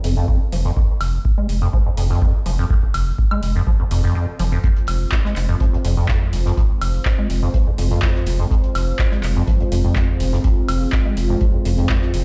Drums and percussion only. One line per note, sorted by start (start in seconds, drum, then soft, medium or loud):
0.04 open hi-hat medium
0.28 kick loud
0.52 open hi-hat medium
0.77 kick loud
1.01 open hi-hat medium
1.01 high woodblock medium
1.25 kick loud
1.49 open hi-hat medium
1.73 kick loud
1.97 open hi-hat medium
2.22 kick loud
2.46 open hi-hat medium
2.70 kick loud
2.83 kick medium
2.94 open hi-hat medium
2.94 high woodblock medium
3.19 kick loud
3.31 high woodblock medium
3.43 open hi-hat medium
3.67 kick loud
3.91 open hi-hat medium
4.39 open hi-hat medium
4.64 kick loud
4.64 closed hi-hat medium
4.76 closed hi-hat soft
4.87 closed hi-hat medium
4.87 open hi-hat medium
4.87 high woodblock medium
5.12 kick loud
5.12 snare loud
5.12 clap loud
5.12 closed hi-hat medium
5.25 snare medium
5.36 snare soft
5.36 clap medium
5.36 closed hi-hat medium
5.36 open hi-hat medium
5.60 kick loud
5.60 closed hi-hat medium
5.74 closed hi-hat soft
5.85 closed hi-hat medium
5.85 open hi-hat loud
6.09 kick loud
6.09 snare loud
6.09 clap loud
6.09 closed hi-hat medium
6.33 closed hi-hat medium
6.33 open hi-hat medium
6.46 snare soft
6.57 kick loud
6.57 closed hi-hat medium
6.82 closed hi-hat medium
6.82 open hi-hat loud
6.82 high woodblock medium
6.94 closed hi-hat soft
7.05 kick loud
7.05 snare loud
7.05 clap loud
7.05 closed hi-hat medium
7.30 closed hi-hat medium
7.30 open hi-hat medium
7.54 kick loud
7.54 closed hi-hat medium
7.78 closed hi-hat medium
7.78 open hi-hat loud
7.90 closed hi-hat soft
8.02 kick loud
8.02 snare loud
8.02 clap loud
8.02 closed hi-hat medium
8.15 snare medium
8.26 closed hi-hat medium
8.26 open hi-hat medium
8.51 kick loud
8.51 closed hi-hat medium
8.64 closed hi-hat soft
8.75 closed hi-hat medium
8.75 open hi-hat loud
8.75 high woodblock medium
8.99 kick loud
8.99 snare loud
8.99 clap loud
8.99 closed hi-hat medium
9.11 snare medium
9.23 snare soft
9.23 clap medium
9.23 closed hi-hat medium
9.23 open hi-hat medium
9.47 kick loud
9.47 closed hi-hat medium
9.60 closed hi-hat soft
9.72 closed hi-hat medium
9.72 open hi-hat loud
9.96 kick loud
9.96 snare loud
9.96 clap loud
9.96 closed hi-hat medium
10.20 closed hi-hat medium
10.20 open hi-hat medium
10.33 snare soft
10.44 kick loud
10.44 closed hi-hat medium
10.69 closed hi-hat medium
10.69 open hi-hat loud
10.69 high woodblock medium
10.81 closed hi-hat soft
10.92 kick loud
10.92 snare loud
10.92 clap loud
10.92 closed hi-hat medium
11.17 closed hi-hat medium
11.17 open hi-hat medium
11.41 kick loud
11.41 closed hi-hat medium
11.65 closed hi-hat medium
11.65 open hi-hat loud
11.78 closed hi-hat soft
11.89 kick loud
11.89 snare loud
11.89 clap loud
11.89 closed hi-hat medium
12.02 snare soft
12.14 closed hi-hat medium
12.14 open hi-hat loud